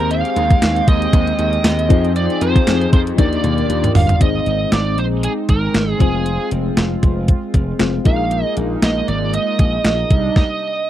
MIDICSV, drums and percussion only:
0, 0, Header, 1, 2, 480
1, 0, Start_track
1, 0, Tempo, 512821
1, 99, Time_signature, 4, 2, 24, 8
1, 10201, End_track
2, 0, Start_track
2, 0, Title_t, "Drums"
2, 100, Note_on_c, 9, 42, 100
2, 194, Note_off_c, 9, 42, 0
2, 235, Note_on_c, 9, 42, 51
2, 328, Note_off_c, 9, 42, 0
2, 340, Note_on_c, 9, 42, 74
2, 434, Note_off_c, 9, 42, 0
2, 472, Note_on_c, 9, 42, 52
2, 473, Note_on_c, 9, 36, 95
2, 566, Note_off_c, 9, 36, 0
2, 566, Note_off_c, 9, 42, 0
2, 580, Note_on_c, 9, 38, 116
2, 581, Note_on_c, 9, 42, 98
2, 582, Note_on_c, 9, 54, 67
2, 674, Note_off_c, 9, 38, 0
2, 674, Note_off_c, 9, 42, 0
2, 676, Note_off_c, 9, 54, 0
2, 715, Note_on_c, 9, 42, 54
2, 808, Note_off_c, 9, 42, 0
2, 821, Note_on_c, 9, 36, 104
2, 821, Note_on_c, 9, 42, 68
2, 914, Note_off_c, 9, 36, 0
2, 915, Note_off_c, 9, 42, 0
2, 955, Note_on_c, 9, 42, 58
2, 1048, Note_off_c, 9, 42, 0
2, 1060, Note_on_c, 9, 36, 102
2, 1061, Note_on_c, 9, 42, 109
2, 1153, Note_off_c, 9, 36, 0
2, 1154, Note_off_c, 9, 42, 0
2, 1192, Note_on_c, 9, 42, 49
2, 1286, Note_off_c, 9, 42, 0
2, 1298, Note_on_c, 9, 42, 84
2, 1392, Note_off_c, 9, 42, 0
2, 1430, Note_on_c, 9, 42, 50
2, 1524, Note_off_c, 9, 42, 0
2, 1537, Note_on_c, 9, 38, 121
2, 1537, Note_on_c, 9, 54, 65
2, 1541, Note_on_c, 9, 42, 82
2, 1631, Note_off_c, 9, 38, 0
2, 1631, Note_off_c, 9, 54, 0
2, 1634, Note_off_c, 9, 42, 0
2, 1675, Note_on_c, 9, 42, 65
2, 1768, Note_off_c, 9, 42, 0
2, 1780, Note_on_c, 9, 36, 108
2, 1781, Note_on_c, 9, 42, 72
2, 1874, Note_off_c, 9, 36, 0
2, 1875, Note_off_c, 9, 42, 0
2, 1915, Note_on_c, 9, 42, 53
2, 2009, Note_off_c, 9, 42, 0
2, 2021, Note_on_c, 9, 42, 94
2, 2114, Note_off_c, 9, 42, 0
2, 2154, Note_on_c, 9, 42, 53
2, 2248, Note_off_c, 9, 42, 0
2, 2259, Note_on_c, 9, 42, 81
2, 2352, Note_off_c, 9, 42, 0
2, 2393, Note_on_c, 9, 36, 98
2, 2393, Note_on_c, 9, 42, 54
2, 2487, Note_off_c, 9, 36, 0
2, 2487, Note_off_c, 9, 42, 0
2, 2500, Note_on_c, 9, 38, 126
2, 2500, Note_on_c, 9, 42, 94
2, 2501, Note_on_c, 9, 54, 65
2, 2593, Note_off_c, 9, 38, 0
2, 2594, Note_off_c, 9, 42, 0
2, 2595, Note_off_c, 9, 54, 0
2, 2634, Note_on_c, 9, 42, 54
2, 2728, Note_off_c, 9, 42, 0
2, 2741, Note_on_c, 9, 36, 103
2, 2742, Note_on_c, 9, 42, 65
2, 2835, Note_off_c, 9, 36, 0
2, 2835, Note_off_c, 9, 42, 0
2, 2874, Note_on_c, 9, 42, 62
2, 2968, Note_off_c, 9, 42, 0
2, 2980, Note_on_c, 9, 36, 102
2, 2980, Note_on_c, 9, 42, 102
2, 2981, Note_on_c, 9, 48, 63
2, 3073, Note_off_c, 9, 42, 0
2, 3074, Note_off_c, 9, 36, 0
2, 3074, Note_off_c, 9, 48, 0
2, 3114, Note_on_c, 9, 42, 50
2, 3207, Note_off_c, 9, 42, 0
2, 3218, Note_on_c, 9, 42, 83
2, 3220, Note_on_c, 9, 47, 78
2, 3312, Note_off_c, 9, 42, 0
2, 3313, Note_off_c, 9, 47, 0
2, 3351, Note_on_c, 9, 42, 45
2, 3444, Note_off_c, 9, 42, 0
2, 3461, Note_on_c, 9, 42, 80
2, 3555, Note_off_c, 9, 42, 0
2, 3592, Note_on_c, 9, 45, 84
2, 3594, Note_on_c, 9, 42, 61
2, 3686, Note_off_c, 9, 45, 0
2, 3687, Note_off_c, 9, 42, 0
2, 3697, Note_on_c, 9, 46, 71
2, 3698, Note_on_c, 9, 43, 106
2, 3791, Note_off_c, 9, 46, 0
2, 3792, Note_off_c, 9, 43, 0
2, 3830, Note_on_c, 9, 43, 98
2, 3831, Note_on_c, 9, 42, 55
2, 3924, Note_off_c, 9, 43, 0
2, 3925, Note_off_c, 9, 42, 0
2, 3938, Note_on_c, 9, 42, 96
2, 3939, Note_on_c, 9, 36, 96
2, 4032, Note_off_c, 9, 36, 0
2, 4032, Note_off_c, 9, 42, 0
2, 4178, Note_on_c, 9, 42, 66
2, 4271, Note_off_c, 9, 42, 0
2, 4418, Note_on_c, 9, 38, 109
2, 4418, Note_on_c, 9, 42, 89
2, 4511, Note_off_c, 9, 38, 0
2, 4512, Note_off_c, 9, 42, 0
2, 4660, Note_on_c, 9, 42, 60
2, 4754, Note_off_c, 9, 42, 0
2, 4898, Note_on_c, 9, 42, 98
2, 4991, Note_off_c, 9, 42, 0
2, 5136, Note_on_c, 9, 42, 77
2, 5139, Note_on_c, 9, 36, 80
2, 5229, Note_off_c, 9, 42, 0
2, 5232, Note_off_c, 9, 36, 0
2, 5377, Note_on_c, 9, 38, 104
2, 5380, Note_on_c, 9, 42, 72
2, 5470, Note_off_c, 9, 38, 0
2, 5474, Note_off_c, 9, 42, 0
2, 5618, Note_on_c, 9, 42, 68
2, 5619, Note_on_c, 9, 36, 102
2, 5712, Note_off_c, 9, 36, 0
2, 5712, Note_off_c, 9, 42, 0
2, 5858, Note_on_c, 9, 42, 94
2, 5952, Note_off_c, 9, 42, 0
2, 6097, Note_on_c, 9, 42, 71
2, 6190, Note_off_c, 9, 42, 0
2, 6338, Note_on_c, 9, 38, 115
2, 6338, Note_on_c, 9, 42, 85
2, 6431, Note_off_c, 9, 38, 0
2, 6432, Note_off_c, 9, 42, 0
2, 6579, Note_on_c, 9, 36, 99
2, 6579, Note_on_c, 9, 42, 64
2, 6673, Note_off_c, 9, 36, 0
2, 6673, Note_off_c, 9, 42, 0
2, 6816, Note_on_c, 9, 42, 93
2, 6818, Note_on_c, 9, 36, 93
2, 6910, Note_off_c, 9, 42, 0
2, 6911, Note_off_c, 9, 36, 0
2, 7057, Note_on_c, 9, 42, 82
2, 7058, Note_on_c, 9, 36, 78
2, 7150, Note_off_c, 9, 42, 0
2, 7152, Note_off_c, 9, 36, 0
2, 7296, Note_on_c, 9, 38, 107
2, 7299, Note_on_c, 9, 42, 77
2, 7389, Note_off_c, 9, 38, 0
2, 7393, Note_off_c, 9, 42, 0
2, 7538, Note_on_c, 9, 36, 97
2, 7538, Note_on_c, 9, 42, 67
2, 7631, Note_off_c, 9, 42, 0
2, 7632, Note_off_c, 9, 36, 0
2, 7779, Note_on_c, 9, 42, 99
2, 7872, Note_off_c, 9, 42, 0
2, 8018, Note_on_c, 9, 42, 72
2, 8112, Note_off_c, 9, 42, 0
2, 8259, Note_on_c, 9, 38, 117
2, 8260, Note_on_c, 9, 42, 89
2, 8353, Note_off_c, 9, 38, 0
2, 8354, Note_off_c, 9, 42, 0
2, 8500, Note_on_c, 9, 42, 62
2, 8594, Note_off_c, 9, 42, 0
2, 8737, Note_on_c, 9, 42, 96
2, 8831, Note_off_c, 9, 42, 0
2, 8976, Note_on_c, 9, 42, 83
2, 8978, Note_on_c, 9, 36, 79
2, 9070, Note_off_c, 9, 42, 0
2, 9072, Note_off_c, 9, 36, 0
2, 9215, Note_on_c, 9, 38, 111
2, 9218, Note_on_c, 9, 42, 82
2, 9309, Note_off_c, 9, 38, 0
2, 9312, Note_off_c, 9, 42, 0
2, 9458, Note_on_c, 9, 36, 106
2, 9458, Note_on_c, 9, 42, 72
2, 9551, Note_off_c, 9, 42, 0
2, 9552, Note_off_c, 9, 36, 0
2, 9697, Note_on_c, 9, 38, 82
2, 9698, Note_on_c, 9, 36, 105
2, 9791, Note_off_c, 9, 36, 0
2, 9791, Note_off_c, 9, 38, 0
2, 10201, End_track
0, 0, End_of_file